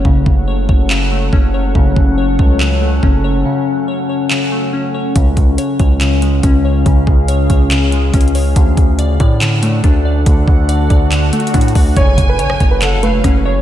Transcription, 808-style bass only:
\new Staff \with { instrumentName = "808-style bass" } { \clef bass \time 4/4 \key fis \minor \tempo 4 = 141 fis,,8 fis,,4 fis,,4. fis,,4 | fis,,8 fis,,4 cis,4. fis,,4 | r1 | cis,8 cis,8 r8 cis,4. cis,4 |
cis,8 cis,4 cis,4. cis,4 | d,8 d,4 a,4. d,4 | d,8 d,4 d,4 r8 a,8 d,8 | fis,,8 fis,,8 r8 fis,,4. fis,,4 | }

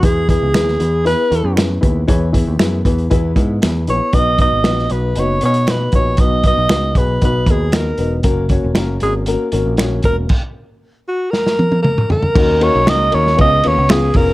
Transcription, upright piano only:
<<
  \new Staff \with { instrumentName = "Upright piano" } { \time 4/4 \key b \major \tempo 4 = 117 <b e' gis' b'>8 <b e' gis' b'>8 <b e' gis' b'>8 <b e' gis' b'>8 <b e' gis' b'>8 <b e' gis' b'>8 <b e' gis' b'>8 <b e' gis' b'>8 | <b e' gis' cis''>8 <b e' gis' b'>8 <b e' gis' b'>8 <b e' gis' b'>8 <b e' gis' b'>8 <b e' gis' b'>8 <b e' gis' b'>8 <b e' gis' b'>8 | <b dis' fis' b'>8 <b dis' fis' b'>8 <b dis' fis' b'>8 <b dis' fis' b'>8 <b dis' fis' b'>8 <b dis' fis' b'>8 <b dis' fis' b'>8 <b dis' fis' b'>8 | <b dis' fis' b'>8 <b dis' fis' b'>8 <b dis' fis' b'>8 <b dis' fis' gis'>8 <b dis' fis' b'>8 <b dis' fis' b'>8 <b dis' fis' b'>8 <b dis' fis' b'>8 |
<ais cis' fis' ais'>8 <ais cis' fis' cis''>8 <ais cis' fis' ais'>8 <ais cis' fis' ais'>8 <ais cis' fis' ais'>8 <ais cis' fis' ais'>8 <ais cis' fis' cis''>8 <ais cis' fis'>8 | r1 | <ais cis' dis' fis' ais'>8 <ais cis' dis' fis' ais'>8 <ais cis' dis' fis' ais'>8 <ais cis' dis' fis' ais'>8 <b cis' eis' gis' b'>8 <b cis' eis' gis' b'>8 <b cis' eis' gis' b'>8 <b cis' eis' gis' ais'>8 | }
  \new Staff \with { instrumentName = "Upright piano" } { \clef bass \time 4/4 \key b \major e4. r2 r8 | e4. r2 r8 | b,4. r2 r8 | b,4. r2 r8 |
r1 | r1 | dis4. r8 cis4. r8 | }
>>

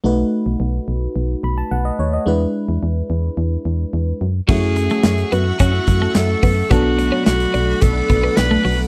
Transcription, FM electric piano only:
\new Staff \with { instrumentName = "FM electric piano" } { \time 4/4 \key b \dorian \tempo 4 = 108 << { r2 r8 b''16 a''16 fis''16 dis''16 cis''16 dis''16~ | dis''16 r2. r8. | r1 | r1 | } \\ { <a dis' fis' b'>1 | <gis d' e' b'>2.~ <gis d' e' b'>8 r8 | <fis a cis' e'>1 | <fis b d' a'>1 | } >> }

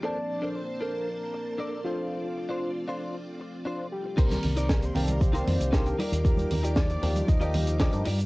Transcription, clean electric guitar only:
\new Staff \with { instrumentName = "Clean electric guitar" } { \time 4/4 \key c \dorian \tempo 4 = 116 <d' a' bes' c''>16 r8 <d' a' bes' c''>16 r8 <d' a' bes' c''>8 r4 <d' a' bes' d''>8 <d' f' c''>8~ | <d' f' c''>16 r8 <d' f' c''>16 r8 <d' f' c''>8 r4 <d' f' c''>8 r8 | <ees' g' bes' c''>8 r16 <ees' g' bes' d''>16 r4 r16 <ees' g' bes' c''>16 r8 <ees' g' bes' c''>16 r16 <ees' f' g' d''>8~ | <ees' f' g' d''>8 r16 <ees' f' g' d''>16 r4 r16 <ees' f' g' d''>16 r8 <ees' f' g' d''>16 r16 <ees' f' g' d''>16 r16 | }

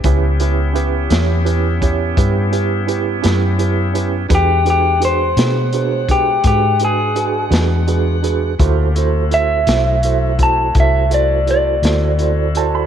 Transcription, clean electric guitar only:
\new Staff \with { instrumentName = "Clean electric guitar" } { \time 12/8 \key a \mixolydian \tempo 4. = 56 g'8 r1 r4. | g'8 g'8 c''4. g'8 g'8 gis'2~ gis'8 | r4 e''4. a''8 e''8 d''8 d''2 | }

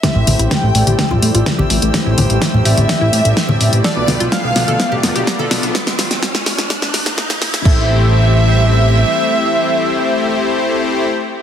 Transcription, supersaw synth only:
\new Staff \with { instrumentName = "Supersaw synth" } { \time 4/4 \key a \minor \tempo 4 = 126 <a c' e' g' c''>4. <a c' e' g' d''>2~ <a c' e' g' d''>8 | <a c' e' g' c''>4. <a c' e' g' d''>2~ <a c' e' g' d''>8 | <a b d' f' b'>4. <a b d' f' d''>2~ <a b d' f' d''>8 | r1 |
<a c' e' g' c''>1~ | <a c' e' g' c''>1 | }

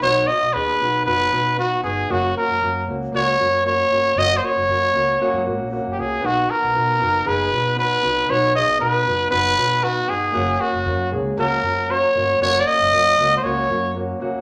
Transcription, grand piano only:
\new Staff \with { instrumentName = "Grand piano" } { \time 4/4 \key b \major \tempo 4 = 116 <b dis' fis'>8 <b fis'>8 <b dis' gis'>8 <b dis' fis'>8 <b dis' fis'>8 <b dis' fis'>8 <b dis' fis'>8 <b dis' fis'>8 | <ais cis' fis'>8 <ais cis' fis'>8 <ais cis' fis'>8 <ais cis' fis'>8 <ais cis' fis'>8 <ais cis' fis'>8 <ais cis' fis'>8 <ais cis' fis'>8 | <ais cis' fis'>8 <ais cis' fis'>8 <ais cis' fis'>8 <ais cis' fis'>8 <ais cis' fis'>8 <ais cis' fis'>8 <ais cis' fis'>8 <ais cis' fis'>8 | <b dis' fis'>8 <b dis' fis'>8 <b dis' fis'>8 <b dis' fis'>8 <b dis' gis'>8 <b fis'>8 <b dis' fis'>8 <b dis' fis'>8 |
<b dis' fis'>8 <b dis' gis'>8 <b dis' fis'>8 <b dis' fis'>8 <b dis' fis'>8 <b dis' fis'>8 <b dis' fis'>8 <b dis' fis'>8 | <ais cis' fis'>8 <ais cis' fis'>8 <ais cis' fis'>8 <ais cis' gis'>8 <ais cis' fis'>8 <ais cis' fis'>8 <ais cis' fis'>8 <ais cis' fis'>8 | <ais cis' fis'>8 <ais cis' fis'>8 <ais cis' fis'>8 <ais cis' fis'>8 <ais cis' fis'>8 <ais cis' fis'>8 <ais cis' fis'>8 <ais cis' fis'>8 | }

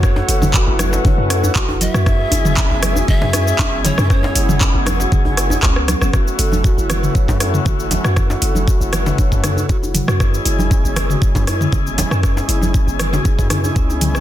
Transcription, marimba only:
\new Staff \with { instrumentName = "Marimba" } { \time 4/4 \key fis \minor \tempo 4 = 118 r8 a'16 r16 fis'16 e'16 r16 b'16 cis''16 r16 a'16 r16 fis'16 e'16 r8 | cis'16 r16 e'16 r8 b16 r16 fis'16 gis'16 r16 e'16 r16 cis'16 b16 r16 cis'16 | cis'16 r16 e'16 r16 cis'16 b16 r16 fis'16 gis'16 r16 e'16 r16 cis'16 b16 r16 cis'16 | fis'16 r16 a'16 r16 fis'16 e'16 r16 b'16 cis''16 r16 a'16 r16 fis'16 e'16 r16 fis'16 |
fis'16 r16 a'16 r16 fis'16 e'16 r16 b'16 cis''16 r16 a'16 r16 fis'16 e'16 r16 fis'16 | cis'16 r16 e'16 r16 cis'16 b16 r16 fis'16 gis'16 r16 e'16 r16 cis'16 b16 r16 cis'16 | cis'16 r16 e'16 r16 cis'16 b16 r16 fis'16 gis'16 r16 e'16 r16 cis'16 b16 r16 cis'16 | }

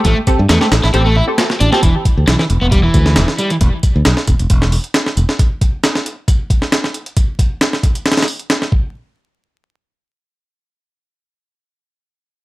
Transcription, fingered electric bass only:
\new Staff \with { instrumentName = "Fingered electric bass" } { \clef bass \time 4/4 \key a \dorian \tempo 4 = 135 a,,16 r8 g,16 e,16 r16 a,,16 a,,16 a,,8 r4 a,,16 r16 | e,,16 r8 d,16 b,,16 r16 e,,16 e,,8 r16 d,8 e,,16 r8. | e,,16 r8 d,16 b,,16 r16 e,,16 e,,16 e,,8 r4 e,,16 r16 | r1 |
r1 | r1 | r1 | }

